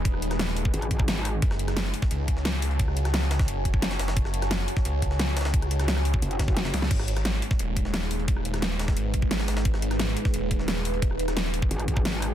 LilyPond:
<<
  \new Staff \with { instrumentName = "Ambient pad" } { \time 4/4 \key gis \phrygian \tempo 4 = 175 <gis dis' gis' b'>1 | <fis' cis'' gis'' a''>1~ | <fis' cis'' gis'' a''>1~ | <fis' cis'' gis'' a''>1~ |
<fis' cis'' gis'' a''>1 | <gis dis' gis' b'>1~ | <gis dis' gis' b'>1~ | <gis dis' gis' b'>1~ |
<gis dis' gis' b'>1 | }
  \new Staff \with { instrumentName = "Wobble bass" } { \clef bass \time 4/4 \key gis \phrygian r2 gis,,4 gis,,4 | r1 | r1 | r1 |
r2 fis,,4. r8 | r1 | r1 | r1 |
r2 gis,,4 gis,,4 | }
  \new Staff \with { instrumentName = "Detuned saw bass" } { \clef bass \time 4/4 \key gis \phrygian dis,,2 r2 | fis,,4. r8 cis,2~ | cis,2 fis,,4. fis,,8 | fis,,4. r8 cis,2~ |
cis,2 r4. cis,8 | gis,,4. r8 dis,,2~ | dis,,2 gis,,4. gis,,8 | gis,,4. r8 dis,,2~ |
dis,,2 r2 | }
  \new DrumStaff \with { instrumentName = "Drums" } \drummode { \time 4/4 <hh bd>16 ss16 hh16 <hh ss sn>16 <hh sn>16 sn16 <hh hho>16 bd16 hh16 hh16 <hh bd>16 bd16 <hh sn>8 <hh hho>8 | <hh bd>16 <ss sn>16 hh16 <hh ss sn>16 <hh sn>16 sn16 <hh hho>16 <bd sn>16 hh8 <hh bd>16 sn16 <hh sn>16 sn16 <hh hho>16 hh16 | <hh bd>16 ss16 hh16 <hh ss sn>16 <hh sn>16 sn16 <hh hho sn>16 <hh bd sn>16 hh8 <hh bd>16 bd16 <hh sn>16 <hh sn>16 <hh hho sn>16 <hh sn>16 | <hh bd>16 <ss sn>16 hh16 <hh ss sn>16 <hh sn>16 sn16 <hh hho>16 <bd sn>16 hh8 <hh bd>16 sn16 <hh sn>16 sn16 <hh hho sn>32 <hh sn>32 <hh sn>16 |
<hh bd>16 <hh ss>16 hh16 <hh ss sn>16 <hh sn>16 <ss sn>16 <hh hho>16 bd16 hh16 hh16 <hh bd sn>16 <bd sn>16 <hh sn>16 <hh sn>16 <hho sn>16 <hh sn>16 | <cymc hh bd>16 <ss sn>16 hh16 <hh ss sn>16 <hh sn>16 sn16 <hh hho>16 <bd sn>16 hh8 <hh bd>16 sn16 <hh sn>16 sn16 <hh hho>16 hh16 | <hh bd>16 ss16 hh16 <hh ss sn>16 <hh sn>16 sn16 <hh hho sn>16 <hh bd sn>16 hh8 <hh bd>16 bd16 <hh sn>16 <hh sn>16 <hh hho sn>16 <hh sn>16 | <hh bd>16 <ss sn>16 hh16 <hh ss sn>16 <hh sn>16 sn16 <hh hho>16 <bd sn>16 hh8 <hh bd>16 sn16 <hh sn>16 sn16 <hh hho>16 hh16 |
<hh bd>16 ss16 hh16 <hh ss sn>16 <hh sn>16 sn16 <hh hho>16 bd16 hh16 hh16 <hh bd>16 bd16 <hh sn>8 <hh hho>8 | }
>>